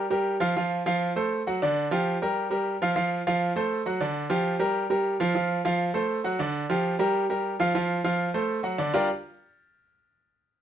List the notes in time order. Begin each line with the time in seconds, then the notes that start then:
0.10 G3 G4 A#4
0.40 F3 F4 F5
0.56 F3 F4 F5
0.86 F3 F4 F5
1.16 A3 A4 C5
1.47 F#3 F#4 F#5
1.62 D3 D4 D5
1.91 F3 F4 G4
2.22 G3 G4 A#4
2.50 G3 G4 A#4
2.82 F3 F4 F5
2.96 F3 F4 F5
3.27 F3 F4 F5
3.56 A3 A4 C5
3.86 F#3 F#4 F#5
4.01 D3 D4 D5
4.30 F3 F4 G4
4.59 G3 G4 A#4
4.90 G3 G4 A#4
5.20 F3 F4 F5
5.35 F3 F4 F5
5.65 F3 F4 F5
5.94 A3 A4 C5
6.24 F#3 F#4 F#5
6.39 D3 D4 D5
6.70 F3 F4 G4
6.99 G3 G4 A#4
7.30 G3 G4 A#4
7.60 F3 F4 F5
7.75 F3 F4 F5
8.04 F3 F4 F5
8.34 A3 A4 C5
8.63 F#3 F#4 F#5
8.78 D3 D4 D5
8.94 G3 D4 F4 G4 A#4 D5